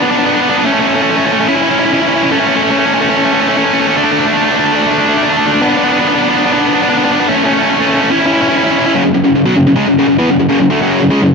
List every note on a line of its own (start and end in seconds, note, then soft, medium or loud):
0.02 0.09 B3 medium
0.02 0.10 D4 medium
0.11 0.18 B3 medium
0.11 0.18 D4 medium
0.19 0.25 B3 medium
0.19 0.26 D4 medium
0.25 0.33 B3 medium
0.25 0.34 D4 medium
0.34 0.41 B3 medium
0.34 0.41 D4 medium
0.41 0.49 B3 medium
0.41 0.49 D4 loud
0.50 0.57 B3 medium
0.50 0.57 D4 medium
0.57 0.64 B3 medium
0.57 0.65 D4 medium
0.65 0.72 A3 loud
0.65 0.73 C#4 loud
0.73 0.79 A3 medium
0.73 0.80 C#4 medium
0.80 0.87 A3 medium
0.80 0.88 C#4 medium
0.87 0.94 A3 medium
0.87 0.95 C#4 medium
0.94 1.02 A3 medium
0.94 1.02 C#4 medium
1.02 1.09 A3 medium
1.02 1.09 C#4 medium
1.10 1.17 A3 medium
1.10 1.16 C#4 medium
1.17 1.24 A3 medium
1.17 1.24 C#4 medium
1.25 1.32 A3 medium
1.25 1.32 C#4 medium
1.32 1.39 A3 medium
1.32 1.39 C#4 medium
1.39 1.47 A3 medium
1.39 1.47 C#4 medium
1.48 1.55 C#4 medium
1.48 1.55 E4 loud
1.55 1.63 C#4 medium
1.55 1.63 E4 medium
1.63 1.71 C#4 medium
1.63 1.70 E4 medium
1.70 1.79 C#4 medium
1.70 1.77 E4 medium
1.79 1.85 C#4 medium
1.79 1.85 E4 medium
1.85 1.91 C#4 medium
1.85 1.92 E4 medium
1.91 1.99 C#4 medium
1.91 2.00 E4 loud
2.02 2.08 C#4 medium
2.02 2.08 E4 medium
2.08 2.16 C#4 medium
2.08 2.15 E4 medium
2.15 2.23 C#4 medium
2.15 2.23 E4 medium
2.23 2.31 C#4 medium
2.23 2.31 E4 medium
2.31 2.38 A3 medium
2.31 2.40 C#4 loud
2.39 2.46 A3 medium
2.39 2.47 C#4 medium
2.46 2.54 A3 medium
2.46 2.55 C#4 medium
2.55 2.63 A3 medium
2.55 2.62 C#4 medium
2.63 2.71 A3 medium
2.63 2.71 C#4 medium
2.71 2.78 A3 medium
2.71 2.79 C#4 medium
2.78 2.85 A3 medium
2.78 2.86 C#4 medium
2.86 2.92 A3 medium
2.86 2.94 C#4 medium
2.93 3.00 A3 medium
2.93 3.02 C#4 medium
3.01 3.09 A3 medium
3.01 3.10 C#4 medium
3.09 3.17 A3 medium
3.09 3.17 C#4 medium
3.17 3.25 A3 medium
3.17 3.26 C#4 medium
3.25 3.33 A3 medium
3.25 3.34 C#4 medium
3.33 3.40 A3 medium
3.33 3.42 C#4 medium
3.40 3.48 A3 medium
3.40 3.49 C#4 medium
3.48 3.56 A3 medium
3.48 3.56 C#4 medium
3.57 3.64 A3 medium
3.57 3.65 C#4 medium
3.64 3.72 A3 medium
3.64 3.73 C#4 medium
3.73 3.80 A3 medium
3.73 3.80 C#4 medium
3.80 3.87 A3 medium
3.80 3.89 C#4 medium
3.87 3.95 A3 medium
3.87 3.97 C#4 medium
3.96 4.04 A3 loud
3.96 4.04 D4 loud
4.04 4.11 A3 medium
4.04 4.12 D4 medium
4.11 4.19 A3 medium
4.11 4.20 D4 medium
4.20 4.26 A3 medium
4.20 4.28 D4 medium
4.26 4.34 A3 medium
4.26 4.36 D4 medium
4.34 4.41 A3 medium
4.34 4.45 D4 medium
4.42 4.49 A3 loud
4.42 4.52 D4 medium
4.49 4.56 A3 medium
4.49 4.59 D4 medium
4.57 4.64 A3 medium
4.57 4.67 D4 medium
4.65 4.72 A3 medium
4.65 4.75 D4 medium
4.72 4.79 A3 medium
4.72 4.82 D4 medium
4.80 4.87 A3 medium
4.80 4.90 D4 medium
4.87 4.93 A3 medium
4.87 4.98 D4 medium
4.93 5.01 A3 medium
4.98 5.08 A3 medium
4.98 5.05 D4 medium
5.06 5.16 A3 medium
5.06 5.13 D4 medium
5.14 5.25 A3 loud
5.14 5.22 D4 medium
5.22 5.32 A3 medium
5.22 5.29 D4 medium
5.30 5.39 A3 medium
5.30 5.37 D4 medium
5.37 5.47 A3 medium
5.37 5.45 D4 medium
5.46 5.55 A3 medium
5.46 5.52 D4 medium
5.53 5.61 A3 medium
5.53 5.60 D4 medium
5.61 5.68 B3 medium
5.61 5.69 D4 loud
5.68 5.76 B3 medium
5.68 5.77 D4 medium
5.76 5.83 B3 medium
5.76 5.84 D4 medium
5.84 5.91 B3 medium
5.84 5.92 D4 medium
5.92 5.99 B3 medium
5.92 6.00 D4 medium
6.00 6.07 B3 medium
6.00 6.08 D4 medium
6.08 6.14 B3 medium
6.08 6.14 D4 medium
6.15 6.21 B3 medium
6.15 6.21 D4 medium
6.22 6.28 B3 medium
6.22 6.29 D4 loud
6.29 6.36 B3 medium
6.29 6.37 D4 medium
6.36 6.44 B3 medium
6.36 6.45 D4 loud
6.44 6.51 B3 medium
6.44 6.53 D4 medium
6.52 6.58 B3 medium
6.52 6.60 D4 medium
6.59 6.66 B3 medium
6.59 6.68 D4 medium
6.67 6.74 B3 medium
6.67 6.75 D4 medium
6.74 6.81 B3 medium
6.74 6.83 D4 medium
6.81 6.89 B3 medium
6.81 6.89 D4 medium
6.90 6.97 B3 medium
6.90 6.97 D4 medium
6.97 7.04 B3 medium
6.97 7.05 D4 medium
7.04 7.12 B3 medium
7.04 7.13 D4 medium
7.12 7.19 B3 medium
7.12 7.20 D4 medium
7.20 7.27 B3 medium
7.20 7.28 D4 medium
7.28 7.35 A3 medium
7.28 7.37 C#4 loud
7.36 7.43 A3 medium
7.36 7.45 C#4 medium
7.44 7.50 A3 medium
7.44 7.53 C#4 medium
7.50 7.58 A3 medium
7.50 7.62 C#4 medium
7.58 7.66 A3 medium
7.58 7.69 C#4 medium
7.66 7.73 A3 medium
7.66 7.76 C#4 medium
7.73 7.80 A3 medium
7.73 7.85 C#4 medium
7.80 7.88 A3 medium
7.86 7.96 A3 medium
7.86 7.94 C#4 medium
7.94 8.03 A3 medium
7.94 8.01 C#4 medium
8.01 8.11 A3 medium
8.01 8.09 C#4 medium
8.11 8.19 C#4 medium
8.11 8.19 E4 loud
8.19 8.25 C#4 medium
8.19 8.26 E4 medium
8.26 8.33 C#4 medium
8.26 8.33 E4 medium
8.33 8.41 C#4 medium
8.33 8.41 E4 medium
8.41 8.48 C#4 medium
8.41 8.49 E4 loud
8.48 8.55 C#4 medium
8.48 8.56 E4 medium
8.56 8.63 C#4 medium
8.56 8.64 E4 medium
8.63 8.71 C#4 medium
8.63 8.71 E4 medium
8.71 8.78 C#4 medium
8.71 8.79 E4 medium
8.78 8.86 C#4 medium
8.78 8.86 E4 medium
8.86 8.95 C#4 medium
8.86 8.94 E4 medium
8.95 9.04 F#2 loud
8.95 9.04 C#3 loud
9.05 9.13 F#2 medium
9.05 9.13 C#3 medium
9.14 9.23 F#2 medium
9.14 9.24 C#3 medium
9.24 9.34 F#2 medium
9.24 9.35 C#3 medium
9.36 9.46 F#2 medium
9.36 9.45 C#3 medium
9.46 9.55 B2 medium
9.46 9.55 F#3 loud
9.56 9.65 F#2 medium
9.56 9.66 C#3 medium
9.67 9.77 F#2 medium
9.67 9.75 C#3 medium
9.76 9.86 C#3 medium
9.76 9.87 G#3 loud
9.87 9.97 F#2 medium
9.87 9.97 C#3 medium
9.99 10.06 F#2 medium
9.99 10.07 C#3 loud
10.08 10.18 F#2 medium
10.08 10.18 C#3 medium
10.19 10.28 E3 loud
10.19 10.28 B3 loud
10.30 10.38 F#2 medium
10.30 10.38 C#3 medium
10.39 10.48 F#2 medium
10.39 10.48 C#3 medium
10.49 10.59 F#2 medium
10.49 10.59 C#3 medium
10.60 10.70 F#2 medium
10.60 10.70 C#3 medium
10.70 10.80 D3 medium
10.70 10.80 A3 loud
10.81 10.99 F#2 medium
10.81 11.00 C#3 loud
10.81 11.01 F#3 loud
11.01 11.11 F#2 medium
11.01 11.09 C#3 medium
11.10 11.21 C#3 loud
11.10 11.21 G#3 medium
11.22 11.35 F#2 medium
11.22 11.35 C#3 medium